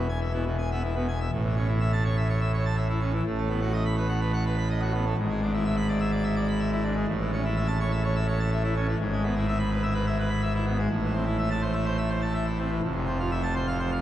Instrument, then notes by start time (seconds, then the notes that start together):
pipe organ
Already playing: E1 E2
0.09 G#5
0.22 E5
0.33 B2 E4
0.46 B2
0.58 G#5
0.71 B3 E5
0.84 E4
0.95 B2 B3
1.08 G#5
1.21 E5
1.32 A1 A2
1.44 E3
1.56 C#4
1.68 E4
1.81 E5
1.93 A5
2.05 C#5
2.17 E5
2.29 C#5
2.41 E5
2.54 C#5
2.65 A5
2.77 E5
2.89 E4
3.01 C#4
3.13 E3
3.26 A1 A2
3.38 A3
3.49 B3
3.62 F#4
3.73 D#5
3.85 B5
3.97 B4
4.09 F#5
4.21 B4
4.33 F#5
4.46 B4
4.58 B5
4.70 D#5
4.82 F#4
4.94 B3
5.06 A3
5.18 G#1 G#2
5.30 G#3
5.42 D4
5.54 E4
5.65 E5
5.77 B5
5.89 D5
6.00 E5
6.12 D5
6.24 E5
6.36 D5
6.48 B5
6.60 E5
6.72 E4
6.84 D4
6.96 G#3
7.08 A1 A2
7.21 E3
7.33 C#4
7.45 E4
7.57 E5
7.68 A5
7.80 C#5
7.91 E5
8.04 C#5
8.16 E5
8.28 C#5
8.40 A5
8.52 E5
8.64 E4
8.76 C#4
8.88 E3
9.00 G#1 G#2
9.13 G#3
9.24 B3
9.36 E4
9.48 E5
9.59 B5
9.71 B4
9.83 E5
9.94 B4
10.07 E5
10.19 B4
10.30 B5
10.41 E5
10.54 E4
10.66 B3
10.79 G#3
10.90 A1 A2
11.02 E3
11.14 C4
11.26 E4
11.38 E5
11.51 A5
11.62 C5
11.73 E5
11.86 C5
11.98 E5
12.09 C5
12.22 A5
12.34 E5
12.46 E4
12.59 C4
12.70 E3
12.83 F1 F2
12.95 C3
13.07 C4
13.19 F4
13.31 E5
13.43 A5
13.55 C5
13.67 F5
13.79 C5
13.92 F5